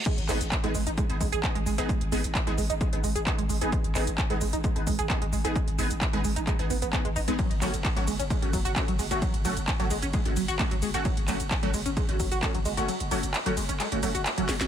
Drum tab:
CC |x---------------|----------------|----------------|----------------|
RD |----------------|----------------|----------------|----------------|
HH |xxoxxxoxxxoxxxox|xxoxxxoxxxoxxxox|xxoxxxoxxxoxxxox|xxoxxxoxxxoxxxox|
SH |x-xxx-xxx-xxx-xx|x-xxx-xxx-xxx-xx|x-xxx-xxx-xxx-xx|x-xxx-xxx-xxx-xx|
CP |--x-x-------x---|----x-------x---|--x-x-------x---|----x---x---x---|
SD |----------------|----------------|----------------|----------------|
BD |o---o---o-o-o---|o---o---o---o---|o---o---o-o-o---|o---o---o---o---|

CC |----------------|----------------|----------------|----------------|
RD |xxxxxxxxxxxxxxxx|xxxxxxxxxxxxxxxx|xxxxxxxxxxxxxxxx|xxxxxxxxxxxxxxxx|
HH |xxoxxxoxxxoxxxox|xxoxxxoxxxoxxxox|xxoxxxoxxxoxxxox|xxoxxxoxxxoxxxox|
SH |x-xxx-xxx-xxx-xx|x-xxx-xxx-xxx-xx|x-xxx-xxx-xxx-xx|x-xxx-xxx-xxx-xx|
CP |--x-x-------x---|----x-------x---|--x-x-------x---|----x---x---x---|
SD |----------------|----------------|----------------|--------------oo|
BD |o---o---o-o-o---|o---o---o---o---|o---o---o-o-o---|----------------|